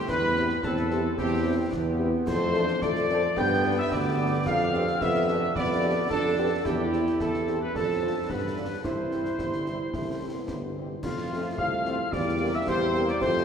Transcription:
0.08 tuba E2, trombone section G3, woodwind section B4, trumpet section B4, piccolo B5, concert bass drum, snare, crash
0.36 trombone section B3, french horn section C4 E4 G4, snare
0.50 snare
0.63 tuba E2, trombone section C4, woodwind section A4, trumpet section A4, piccolo A5, concert bass drum, snare
0.77 snare
0.90 french horn section C4 E4 G4, snare
1.17 tuba E2, trombone section C4, woodwind section G4, trumpet section G4, piccolo G5, concert bass drum, snare
1.45 french horn section C4 E4 G4
1.72 tuba E2, trombone section B3, concert bass drum, snare
1.99 french horn section C4 E4 G4
2.27 tuba F2, trombone section A3, trumpet section C5, woodwind section C5, piccolo C6, concert bass drum, snare, crash
2.54 french horn section A3 D4 A4, trombone section D4, snare
2.68 snare
2.82 tuba F2, trombone section A3, trumpet section D5, woodwind section D5, piccolo D6, concert bass drum, snare
2.96 snare
3.09 french horn section A3 D4 A4, trombone section C4, snare
3.36 tuba G2, trombone section B3, trumpet section G5, woodwind section G5, piccolo G6, concert bass drum, snare
3.63 french horn section B3 D4 G4
3.78 woodwind section E5, trumpet section E5, piccolo E6
3.91 tuba D2, woodwind section D5, trumpet section D5, piccolo D6, concert bass drum, snare
4.18 french horn section B3 D4 G4
4.46 tuba F2, trombone section D4, woodwind section F5, trumpet section F5, piccolo F6, concert bass drum, snare, crash
4.73 french horn section B3 D4 G4, trombone section C4, snare
4.87 snare
5.01 tuba F2, trombone section B3, trumpet section E5, woodwind section E5, piccolo E6, concert bass drum, snare
5.15 snare
5.28 french horn section B3 D4 G4, trombone section D4, snare
5.56 tuba F2, trombone section B3, trumpet section D5, woodwind section D5, piccolo D6, concert bass drum, snare
5.83 french horn section B3 D4 G4
6.10 tuba F2, trombone section D4, trumpet section A4, woodwind section A4, piccolo A5, concert bass drum, snare
6.38 french horn section B3 D4 G4
6.65 tuba E2, trombone section E4, trumpet section G4, woodwind section G4, piccolo G5, concert bass drum, snare, crash
6.93 french horn section C4 E4 G4, snare
7.07 snare
7.20 tuba E2, trumpet section A4, woodwind section A4, piccolo A5, concert bass drum, snare
7.34 snare
7.48 french horn section C4 E4 G4, snare
7.62 woodwind section B4, trumpet section B4, piccolo B5
7.74 tuba F2, trombone section D4, woodwind section A4, trumpet section A4, piccolo A5, concert bass drum, snare
8.02 trombone section C4, french horn section C4 D4 F4
8.29 tuba G2, trombone section B3, woodwind section B4, trumpet section B4, piccolo B5, concert bass drum, snare
8.56 french horn section G3 D4 F4, trombone section D4
8.84 tuba C2, trombone section E4, trumpet section C5, woodwind section C5, piccolo C6, concert bass drum, snare, crash
9.11 french horn section G3 C4 E4, snare
9.25 snare
9.39 tuba G1, euphonium G3, concert bass drum, snare
9.53 snare
9.66 french horn section G3 C4 E4, snare
9.93 tuba C2, euphonium A3, concert bass drum, snare
10.21 french horn section G3 C4 E4
10.35 euphonium B3
10.48 tuba G1, concert bass drum, snare
10.76 french horn section G3 C4 E4
11.03 tuba F2, trombone section F3 A3, woodwind section F4, trumpet section F4, piccolo F5, concert bass drum, snare, crash
11.31 french horn section A3 C4 F4
11.57 tuba C2, euphonium F4, woodwind section F5, trumpet section F5, piccolo F6, concert bass drum
11.85 french horn section A3 C4 F4, snare
12.12 tuba E2, trombone section G3 A#3, euphonium G4, woodwind section D5, trumpet section D5, piccolo D6, concert bass drum, snare
12.40 french horn section A#3 C4 G4
12.53 woodwind section E5, trumpet section E5, piccolo E6
12.67 tuba E2, euphonium G4, woodwind section C5, trumpet section C5, piccolo C6, concert bass drum, snare
12.94 french horn section A#3 C4 G4, snare
13.08 woodwind section D5, trumpet section D5, piccolo D6, snare
13.21 tuba F2, trombone section F3 A3, euphonium C4, woodwind section C5, trumpet section C5, piccolo C6, concert bass drum, snare, crash

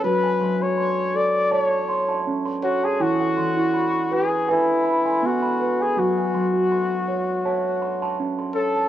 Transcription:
Already playing: steel tongue drum A5
0.04 steel tongue drum F#3 F#4, trumpet B4
0.23 steel tongue drum G#5
0.41 steel tongue drum F#3 C6
0.60 steel tongue drum F#4, trumpet C#5
0.78 steel tongue drum C6
1.14 steel tongue drum A4, trumpet D5
1.51 steel tongue drum C#5 A5, trumpet D5
1.63 trumpet C#5
1.89 steel tongue drum C6
2.08 steel tongue drum A5 C6
2.27 steel tongue drum C#4
2.45 steel tongue drum C6
2.63 trumpet F#4, steel tongue drum C#5
2.83 trumpet G#4, steel tongue drum A5
3.00 steel tongue drum E3 E4, trumpet F#4
3.20 steel tongue drum F#5
3.37 steel tongue drum E3 C6
3.57 steel tongue drum E4
3.74 steel tongue drum B5
4.11 trumpet G#4, steel tongue drum B4
4.48 trumpet E4, steel tongue drum B4 G#5
4.85 steel tongue drum B5
5.05 steel tongue drum G#5 C6
5.23 steel tongue drum B3, trumpet F#4
5.43 steel tongue drum B5
5.60 steel tongue drum B4
5.80 trumpet G#4, steel tongue drum G#5
5.97 steel tongue drum F#3 F#4, trumpet F#4
6.17 steel tongue drum G#5
6.34 steel tongue drum F#3 C6
6.54 steel tongue drum F#4
6.71 steel tongue drum C6
7.08 steel tongue drum C#5
7.45 steel tongue drum C#5 A5
7.82 steel tongue drum C6
8.02 steel tongue drum A5 C6
8.20 steel tongue drum C#4
8.39 steel tongue drum C6
8.55 trumpet A4, steel tongue drum C#5
8.76 steel tongue drum A5

